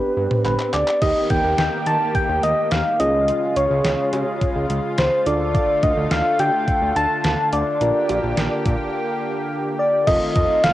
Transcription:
Already playing: B3 D4 G4 B4, swell
0.17 G2
0.31 mid tom
0.45 G1 B4, clap
0.59 clap
0.73 D2 D5, clap
0.88 clap
1.02 D#2 D#3 A#3 D#4 G4 D#5, kick, closed hi-hat, crash, downlifter
1.30 D#2 G5, kick, closed hi-hat
1.44 D#2
1.58 D#2 G5, snare, closed hi-hat
1.86 D#3 A5, closed hi-hat
2.15 G5, kick, closed hi-hat
2.29 D#2
2.43 D#2 D#5, closed hi-hat
2.71 D#2 F5, snare, closed hi-hat
3.00 C#2 C#3 G#3 C#4 F4 G#4 D#5, closed hi-hat
3.28 closed hi-hat
3.56 C#2 C#5, closed hi-hat
3.71 C#2
3.85 C#2, snare, closed hi-hat
4.13 C#3, closed hi-hat, cowbell
4.41 kick, closed hi-hat
4.56 C#2
4.70 C#2, closed hi-hat
4.98 C#2 C5, snare, closed hi-hat
5.26 D2 D3 A3 D4 F4 A4 D5, closed hi-hat
5.55 D5, kick, closed hi-hat
5.83 D2 D#5, kick, closed hi-hat
5.97 D2
6.11 D2 F5, snare, closed hi-hat
6.39 D3 G5, closed hi-hat, cowbell
6.68 kick, closed hi-hat
6.82 D2
6.96 D2 A5, closed hi-hat
7.24 D2, snare, closed hi-hat
7.53 D2 D5, closed hi-hat
7.81 A#1 A#3 D4 F4 G4 A#4, closed hi-hat
8.09 A#1, closed hi-hat, cowbell
8.23 A#1
8.37 A#1, snare, closed hi-hat
8.66 A#2, kick, closed hi-hat
9.79 D5
10.07 F1 D#3 A3 C4 F4 A4 D#5, kick, closed hi-hat, crash
10.36 F2 D#5, kick, closed hi-hat
10.64 F1 F5, snare, closed hi-hat

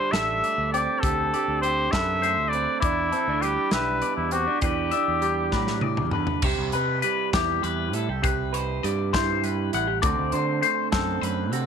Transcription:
Already playing: D3 G3 G4 B4 C5
0.11 A1 A4 E5, snare, closed hi-hat
0.42 A2 D5, closed hi-hat
0.58 D2
0.72 C4 G4 D5, closed hi-hat
1.00 D2 D3 A4, kick, closed hi-hat
1.04 G4 A4
1.34 G4 D5, closed hi-hat
1.48 D2
1.62 G4 C5, closed hi-hat
1.91 F#2 A4 B4 E5, kick, snare, closed hi-hat
2.22 A2 C5, closed hi-hat
2.37 D2
2.49 B4 D5
2.53 C4, closed hi-hat
2.80 E2 E3 D4 E4 D5, kick, closed hi-hat
3.12 C4 A4, closed hi-hat
3.28 D2 D4
3.42 G3 G4 B4, closed hi-hat
3.71 B1 G4 B4 E5, snare, closed hi-hat
4.02 B2 D5, closed hi-hat
4.16 E2 E4
4.31 C4 F#4 G4, closed hi-hat
4.47 D4
4.61 E2 E3 D4 G4 B4, kick, closed hi-hat
4.91 D4 E5, closed hi-hat
5.08 E2
5.22 G3 G4, closed hi-hat
5.52 A2 F#3 B4, kick, snare
5.67 snare
5.81 E3 D5, high tom
5.97 E2, mid tom
6.11 D3 B4, mid tom
6.27 floor tom
6.42 C2 C3 G4 C5, kick, crash
6.59 C2
6.72 C3 B4, closed hi-hat
7.02 G3 B4, closed hi-hat
7.33 E2 E4 G4, kick, snare, closed hi-hat
7.62 E2 G3 B4, closed hi-hat
7.93 A2 E4 A4, closed hi-hat
8.09 C2 G4
8.22 C3 G4 B4, kick, closed hi-hat
8.53 B4 C5, closed hi-hat
8.83 G2 G3 D5, closed hi-hat
9.13 E4 C5, kick, snare, closed hi-hat
9.43 G3 B4, closed hi-hat
9.73 A1 E4 F#5, closed hi-hat
9.87 G4
10.02 D2 D3 A3 C4 F#4 C5 D5, kick, closed hi-hat
10.19 D2
10.32 D3 C5, closed hi-hat
10.62 A3 C5, closed hi-hat
10.92 F#2 C4 A4, kick, snare, closed hi-hat
11.21 F#2 A2 B4, closed hi-hat
11.52 C3 F#4 A4, closed hi-hat

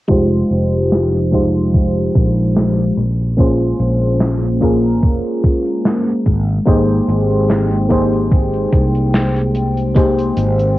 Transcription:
0.08 F1 F3 G#3 D#4 F4 G4 C5, kick, closed hi-hat
0.32 closed hi-hat
0.51 F1, closed hi-hat
0.73 closed hi-hat
0.92 snare, closed hi-hat
1.14 closed hi-hat
1.31 G#3 D#4 F4 G4 C5, kick, closed hi-hat
1.54 closed hi-hat
1.73 kick, closed hi-hat
1.97 closed hi-hat
2.15 A#1, kick, closed hi-hat
2.37 closed hi-hat
2.56 snare, closed hi-hat
2.79 closed hi-hat
2.97 A#1 G#3 A#3 C#4, closed hi-hat
3.20 closed hi-hat
3.37 A#3 C#4 F4 G#4 C5, kick, closed hi-hat
3.61 closed hi-hat
3.79 A#1, closed hi-hat
4.01 closed hi-hat
4.20 snare, closed hi-hat
4.43 closed hi-hat
4.60 A#3 C#4 F4 G#4 A#4, kick, closed hi-hat
4.84 closed hi-hat
5.03 F1, kick, closed hi-hat
5.25 closed hi-hat
5.44 kick, closed hi-hat
5.66 closed hi-hat
5.85 snare, closed hi-hat
6.07 closed hi-hat
6.26 G#1 C4 G5, kick, closed hi-hat
6.48 closed hi-hat
6.66 G#1 A#3 D#4 G4 G#4 C5, kick, closed hi-hat
6.89 closed hi-hat
7.08 G#1, closed hi-hat
7.30 closed hi-hat
7.49 snare, closed hi-hat
7.71 closed hi-hat
7.89 A#3 D#4 G4 G#4 C5, kick, closed hi-hat
8.13 closed hi-hat
8.32 kick, closed hi-hat
8.54 closed hi-hat
8.73 C2, kick, closed hi-hat
8.95 closed hi-hat
9.14 snare, closed hi-hat
9.36 closed hi-hat
9.55 closed hi-hat
9.77 closed hi-hat
9.94 A#3 D#4 G4 G#4 C5, kick, closed hi-hat
10.19 closed hi-hat
10.37 G#1, closed hi-hat
10.59 closed hi-hat

